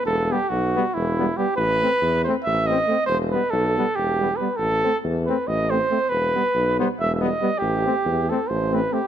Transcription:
0.05 E1 A4
0.31 G3 B3 G4
0.49 B1 F#4
0.76 G3 B3
0.94 E1 E4
1.19 G3 B3
1.37 G3 B3 G4
1.57 A1 B4
1.81 A3 C4
2.02 E2
2.24 A3 C4 C5
2.44 A1 E5
2.67 A3 C4 D#5
2.87 A3 C4
3.06 E1 C5
3.31 G3 B3 B4
3.50 B1 A4
3.77 G3 B3
3.95 E1 G4
4.19 G3 B3
4.36 B3 B4
4.40 G3
4.57 A1 A4
4.84 A3 C4
5.04 E2
5.26 A3 C4 B4
5.47 A1 D#5
5.70 A3 C4 C5
5.90 A3 C4
6.09 E1 B4
6.35 G3 B3
6.55 B1
6.80 G3 B3 C5
7.00 E1 E5
7.15 E5
7.21 G3 B3 D#5
7.42 G3 B3
7.58 A1 G4
7.86 A3 C4
8.05 E2
8.29 A3 C4 A4
8.49 A1 C5
8.72 A3 C4 B4
8.92 A3 C4 G4

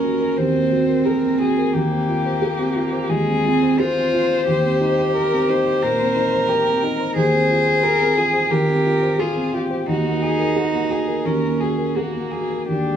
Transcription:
Already playing: D#2 A#3 C#4 F#4 G#4 A#4
0.04 F#4
0.21 A#4
0.38 D#2 C4 C5
0.54 A#3
0.71 F#4
0.89 A#4
1.06 G#4 A#4
1.23 A#3
1.40 F#4 G#4
1.58 A#4
1.74 D#2 A#3 G4
1.91 C4
2.09 F4
2.26 C5
2.42 G#4
2.59 C4
2.75 F4
2.92 C5
3.09 D#2 G#3 G#4
3.27 C4
3.45 C4 F4
3.63 C5
3.79 F4 G#4 C5
3.97 C4
4.13 F4
4.30 C5
4.47 D#2 G4
4.64 C4
4.81 D#4
4.98 C5
5.15 A#4
5.32 C4
5.49 D#4 C5
5.66 C5
5.82 A#2 A#4
6.00 C4
6.16 D#4
6.33 C5
6.49 G4 A#4
6.66 C4
6.83 D#4 A#4
7.00 C5
7.16 D#2 G#4 C5
7.33 C4
7.50 F4
7.67 C5
7.83 G#4 A#4
8.00 C4
8.17 F4 G#4
8.33 C5
8.50 D#3 G4 A#4
8.68 C4
8.85 F4
9.02 C5
9.19 F4 G#4
9.36 C4
9.53 F4 G4
9.70 C5
9.87 D#2 D#4 F#4
10.05 A#3
10.22 F#4 G#4
10.39 A#4
10.56 F#4 G#4
10.73 A#3
10.90 F#4 G#4
11.08 A#4
11.25 D#2 C#4 A#4
11.43 A#3
11.60 F#4 G#4
11.78 A#4
11.96 A#3 F#4 G#4
12.15 A#3
12.31 F#4 G#4
12.50 A#4
12.68 D#2 D4 G4
12.86 G#3

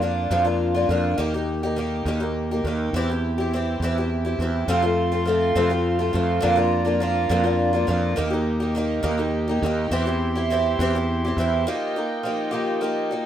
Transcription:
Already playing: F2
0.02 F3 A#3 D4 F4
0.31 F2 D3 F3 A#3 D4 F4
0.44 F3 A#3 D4 F4
0.75 F3 A#3 D4 F4
0.89 F2 F3 A#3 D4 F4
1.18 D#2 D#3 A#3 D#4 G4
1.34 A#3 D#4 G4
1.63 A#3 D#4 G4
1.76 D#3 A#3 D#4 G4
2.06 D#2 D#3 A#3 D#4 G4
2.20 A#3 D#4 G4
2.51 A#3 D#4 G4
2.64 D#2 D#3 A#3 D#4 G4
2.93 E2 E3 C4 E4 G4
3.10 C4 E4 G4
3.38 C4 E4 G4
3.53 E3 C4 E4 G4
3.80 E2 E3 C4
3.84 E4 G4
3.98 C4 E4 G4
4.25 C4 E4 G4
4.39 E2 E3 C4 E4 G4
4.68 F2 C3 F3 A3 C4 F4 A4 F5 C6
4.82 F3 A3 C4 F4
5.12 F3 A3 C4 F4
5.25 F3 A3 C4 F4
5.55 F2 C3 F3 A3 C4 F4
5.70 F3 A3 C4 F4
5.99 F3 A3 C4 F4
6.13 F2 F3 A3 C4 F4
6.41 F2 D3 F3 A#3 D4 F4 D5 A#5
6.55 F3 A#3 D4 F4
6.85 F3 A#3 D4 F4
7.00 F3 A#3 D4 F4
7.29 F2 D3 F3 A#3 D4 F4
7.44 F3 A#3 D4 F4
7.73 F3 A#3 D4 F4
7.87 F2 F3 A#3 D4 F4
8.16 D#2 D#3 A#3 D#4 G4 D#5
8.30 A#3 D#4 G4
8.60 A#3 D#4 G4
8.75 D#3 A#3 D#4 G4
9.03 D#2 D#3 A#3 D#4 G4
9.18 A#3 D#4 G4
9.48 A#3 D#4 G4
9.62 D#2 D#3 A#3 D#4 G4
9.91 E2 E3 C4 E4 G4 E5 C6
10.06 C4 E4 G4
10.35 C4 E4 G4
10.50 E3 C4 E4 G4
10.79 E2 E3 C4 E4 G4
10.95 C4 E4 G4
11.25 C4 E4 G4
11.37 E2 E3 C4 E4
11.41 G4
11.67 D#3 F3 A#3 D#4 F4 G4 D#5 G5
11.96 A#3 D#4 G4
12.23 F3 A#3 D#4 G4
12.51 D#3 F3 A#3 D#4 G4
12.81 F3 A#3 D#4 G4
13.11 A#3 D#4 G4

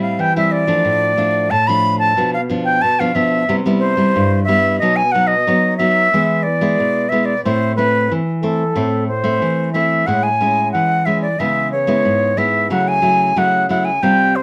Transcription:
Already playing: A2 G3 C4 E4
0.02 F5
0.19 E3 G5
0.36 G3 C4 E4 E5
0.52 D5
0.67 F3 A3 D4
0.85 A2
1.17 F3 A3 D4
1.51 A2 A5
1.67 F3 A3 D4 B5
1.99 A5
2.17 B2 F3 B3 D4
2.34 F5
2.50 F3 B3 D4
2.65 G5
2.82 B2 A5
3.00 F3 B3 D4 F5
3.15 F3 B3 D4 E5
3.49 C3 G3 B3 E4
3.66 G3 B3 E4
3.79 C5
3.97 G3 E4
4.16 G2
4.44 E5
4.48 G3 B3 E4
4.79 B2 F#3 B3 D#5
4.83 D#4
4.96 G#5
5.12 F#3 B3 D#4 F#5
5.27 D#5
5.47 F#3 B3 D#4
5.77 F#3 B3 D#4 E5
6.14 E3 G#3 B3 E4
6.43 D5
6.61 G#3 B3 E4
6.80 B2
7.09 G#3 B3 E4 E5
7.25 D5
7.44 A2 A3 C4 E4 C5
7.76 A3 C4 E4 B4
8.12 E3
8.42 A3 C4 E4 A4
8.75 A2 A3 C4 E4
9.08 C5
9.24 A3 C4 E4
9.42 E3
9.73 A3 C4 E4 E5
10.07 A2 G#3 C#4 E4 F#5
10.23 G#5
10.41 G#3 C#4 E4
10.72 E3 F#5
11.06 G#3 C#4 E4 E5
11.22 D5
11.39 C#3 G#3 B3 E4 E5
11.72 C#5
11.87 G#3 B3 E4
12.05 G#2
12.37 G#3 B3 E4 E5
12.70 C#3 F#3 A3 E4 F#5
12.88 G#5
13.02 F#3 A3 E4
13.36 C#3 F#3 A3 E4 F#5
13.69 F#3 A3 E4 F#5
13.85 G#5
14.03 C3 G3 C4 F4 G5
14.36 C5

